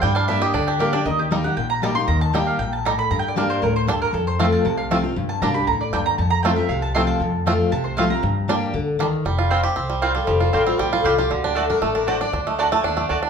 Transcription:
<<
  \new Staff \with { instrumentName = "Mandolin" } { \time 4/4 \key f \mixolydian \tempo 4 = 234 g''8 f''8 e''8 ees''8 d''8 g'8 bes'8 d''8 | ees''8 g'8 r8 fis''8 g''8 bes''8 a''8 c'''8 | bes''8 a''8 g''8 f''8 g''8 a''8 bes''8 b''8 | \tuplet 3/2 { bes''8 g''8 d''8 } bes'8 c''8 bes'8 c''8 a'8 bes'8 |
a'8 c''8 f''8 a''8 a''8 f''8 r4 | r8 a''8 bes''8 b''8 bes''8 d''8 g''8 bes''8 | a''8 bes''8 g''8 e''8 f''8 a''8 c'''8 a''8~ | a''4 r4 a''8 c''8 f''8 bes''8~ |
bes''4 r2. | r4 <c' f' c'' g''>8 r4. <c' f' c'' g''>8 r8 | r4 <c' f' c'' g''>8 r4. <c' f' c'' g''>8 r8 | r4 <a fis' d'' a''>8 r4. <a fis' d'' a''>8 r8 |
r4 <a fis' d'' a''>8 r4. <a fis' d'' a''>8 r8 | }
  \new Staff \with { instrumentName = "Five-string banjo" } { \time 4/4 \key f \mixolydian g8 d'8 d'8 g'8 d'8 d'8 g'8 d'8 | r4 <g ees'>8 r4. <g ees'>8 r8 | r4 <g ees'>8 r4. <g ees'>8 r8 | r4 <g d'>8 r4. <g d'>8 r8 |
r4 <a c' f'>8 r4. <a c' f'>8 r8 | r4 <g d'>8 r4. <g d'>8 r8 | r4 <a c' f'>8 r4. <a c' f'>8 r8 | r4 <a c' f'>8 r4. <a c' f'>8 r8 |
r4 <g d'>8 r4. <g d'>8 r8 | g8 f'8 c'8 g'8 c'8 g8 f'8 g8 | f8 f'8 g8 c'8 g8 f'8 g'8 f'8 | d8 d'8 a8 d'8 a8 d'8 d'8 d'8 |
d'8 a8 d'8 a8 d'8 a8 d'8 d'8 | }
  \new Staff \with { instrumentName = "Steel-string acoustic guitar" } { \time 4/4 \key f \mixolydian << { r4 <g bes d' g'>4 r4 <g bes d' g'>8 <d' g'>8 | r4 <g bes ees' g'>8 <ees' g'>8 r4 <g bes ees' g'>8 <ees' g'>8 | r4 <g bes ees' g'>4 r2 | r4 <g bes d' g'>4 r2 |
r4 <f a c' f'>4 r4 <f a c' f'>8 <c' f'>8 | r4 <g bes d' g'>8 <d' g'>8 r2 | r4 <f a c' f'>8 <c' f'>8 r4 <f a c' f'>4 | r4 <f a c' f'>4 r4 <f a c' f'>8 <c' f'>8 |
r4 <g bes d' g'>4 r2 | r2 c''4. a'8 | g'8 a'8 g'8 f'8 g'8 a'8 f'8 g'8 | fis'8 g'8 a'8 bes'8 a'8 bes'8 c''8 d''8 |
c''8 ees''8 fis''8 a''8 fis''8 d''8 r4 | } \\ { g,2 d2 | ees2 bes,2 | ees2 bes,4 a,4 | g,2 a,4 g,4 |
f,2 c2 | g,2 a,4 g,4 | f,2 c2 | f,2 c2 |
g,2 d4 ees4 | r1 | r1 | r1 |
r1 | } >> }
  \new Staff \with { instrumentName = "Upright bass" } { \clef bass \time 4/4 \key f \mixolydian g,2 d,2 | ees,2 bes,,2 | ees,2 bes,,2 | g,2 d,2 |
f,2 c,2 | g,4 c,4 d,4 ees,4 | f,2 c,2 | f,2 c,2 |
g,2 d,2 | f,,2 c,2 | f,,4 a,,4 bes,,4 c,4 | d,2 a,,2 |
d,2 ees,4 d,4 | }
>>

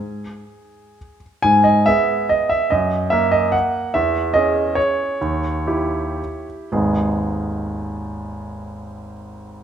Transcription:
\new Staff \with { instrumentName = "Grand piano" } { \time 3/4 \key gis \minor \tempo 4 = 130 << { <gis' gis''>2~ <gis' gis''>8 r8 | gis''8 dis''8 e''4 dis''8 e''8 | dis''4 e''8 dis''8 fis''4 | e''4 dis''4 cis''4~ |
cis''2~ cis''8 r8 | <gis,, dis, gis b dis' gis'>2.~ | <gis,, dis, gis b dis' gis'>2. | } \\ { r2. | gis,4 <b gis'>2 | fis,4 <ais ais'>2 | e,4 <cis' gis'>2 |
dis,4 <e' g'>2 | r2. | r2. | } >> }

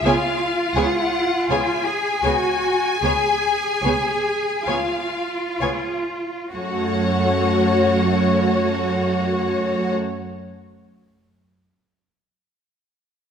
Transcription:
<<
  \new Staff \with { instrumentName = "Violin section" } { \time 4/4 \key fis \minor \tempo 4 = 36 eis''8 fis''8 gis''2 eis''8 r8 | fis''1 | }
  \new Staff \with { instrumentName = "Violin section" } { \time 4/4 \key fis \minor <cis'' gis''>8 <cis'' gis''>8 <cis'' gis''>8 <cis'' gis''>8 <cis'' gis''>8 <cis'' gis''>8 <cis'' gis''>8 <cis'' gis''>8 | cis''1 | }
  \new Staff \with { instrumentName = "Cello section" } { \time 4/4 \key fis \minor eis'4~ eis'16 gis'16 fis'8 gis'4 eis'4 | fis'1 | }
  \new Staff \with { instrumentName = "Viola section" } { \time 4/4 \key fis \minor <b gis'>8 <b gis'>8 <b gis'>8 <b gis'>8 <b gis'>8 <b gis'>8 <b gis'>8 <b gis'>8 | a1 | }
  \new Staff \with { instrumentName = "Double bass section" } { \clef bass \time 4/4 \key fis \minor cis,8 cis,8 cis,8 cis,8 cis,8 cis,8 cis,8 cis,8 | fis,1 | }
>>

